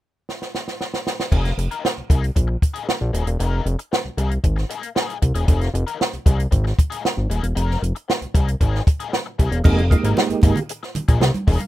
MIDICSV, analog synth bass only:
0, 0, Header, 1, 2, 480
1, 0, Start_track
1, 0, Key_signature, -4, "minor"
1, 0, Tempo, 520382
1, 1215, Time_signature, 4, 2, 24, 8
1, 10766, End_track
2, 0, Start_track
2, 0, Title_t, "Analog synth bass"
2, 0, Program_c, 0, 38
2, 1215, Note_on_c, 0, 29, 109
2, 1408, Note_off_c, 0, 29, 0
2, 1455, Note_on_c, 0, 29, 93
2, 1551, Note_off_c, 0, 29, 0
2, 1819, Note_on_c, 0, 36, 44
2, 1866, Note_off_c, 0, 36, 0
2, 1936, Note_on_c, 0, 36, 84
2, 2128, Note_off_c, 0, 36, 0
2, 2178, Note_on_c, 0, 34, 88
2, 2369, Note_off_c, 0, 34, 0
2, 2777, Note_on_c, 0, 34, 82
2, 2872, Note_off_c, 0, 34, 0
2, 2895, Note_on_c, 0, 27, 80
2, 2991, Note_off_c, 0, 27, 0
2, 3014, Note_on_c, 0, 28, 81
2, 3111, Note_off_c, 0, 28, 0
2, 3136, Note_on_c, 0, 29, 102
2, 3328, Note_off_c, 0, 29, 0
2, 3371, Note_on_c, 0, 29, 99
2, 3469, Note_off_c, 0, 29, 0
2, 3732, Note_on_c, 0, 36, 44
2, 3781, Note_off_c, 0, 36, 0
2, 3851, Note_on_c, 0, 36, 83
2, 4046, Note_off_c, 0, 36, 0
2, 4093, Note_on_c, 0, 32, 102
2, 4287, Note_off_c, 0, 32, 0
2, 4819, Note_on_c, 0, 36, 94
2, 4914, Note_off_c, 0, 36, 0
2, 4933, Note_on_c, 0, 28, 89
2, 5031, Note_off_c, 0, 28, 0
2, 5056, Note_on_c, 0, 29, 99
2, 5249, Note_off_c, 0, 29, 0
2, 5292, Note_on_c, 0, 29, 98
2, 5391, Note_off_c, 0, 29, 0
2, 5658, Note_on_c, 0, 36, 48
2, 5706, Note_off_c, 0, 36, 0
2, 5773, Note_on_c, 0, 36, 92
2, 5968, Note_off_c, 0, 36, 0
2, 6013, Note_on_c, 0, 32, 102
2, 6208, Note_off_c, 0, 32, 0
2, 6616, Note_on_c, 0, 32, 90
2, 6713, Note_off_c, 0, 32, 0
2, 6734, Note_on_c, 0, 27, 86
2, 6832, Note_off_c, 0, 27, 0
2, 6857, Note_on_c, 0, 28, 84
2, 6954, Note_off_c, 0, 28, 0
2, 6976, Note_on_c, 0, 29, 111
2, 7170, Note_off_c, 0, 29, 0
2, 7219, Note_on_c, 0, 29, 97
2, 7315, Note_off_c, 0, 29, 0
2, 7577, Note_on_c, 0, 36, 51
2, 7626, Note_off_c, 0, 36, 0
2, 7696, Note_on_c, 0, 36, 83
2, 7890, Note_off_c, 0, 36, 0
2, 7939, Note_on_c, 0, 32, 89
2, 8132, Note_off_c, 0, 32, 0
2, 8665, Note_on_c, 0, 36, 83
2, 8759, Note_off_c, 0, 36, 0
2, 8776, Note_on_c, 0, 28, 88
2, 8874, Note_off_c, 0, 28, 0
2, 8900, Note_on_c, 0, 29, 127
2, 9189, Note_off_c, 0, 29, 0
2, 9257, Note_on_c, 0, 32, 93
2, 9355, Note_off_c, 0, 32, 0
2, 9494, Note_on_c, 0, 32, 52
2, 9544, Note_off_c, 0, 32, 0
2, 9619, Note_on_c, 0, 32, 78
2, 9716, Note_off_c, 0, 32, 0
2, 10098, Note_on_c, 0, 34, 42
2, 10147, Note_off_c, 0, 34, 0
2, 10224, Note_on_c, 0, 34, 82
2, 10319, Note_off_c, 0, 34, 0
2, 10335, Note_on_c, 0, 36, 99
2, 10434, Note_off_c, 0, 36, 0
2, 10586, Note_on_c, 0, 28, 93
2, 10680, Note_off_c, 0, 28, 0
2, 10766, End_track
0, 0, End_of_file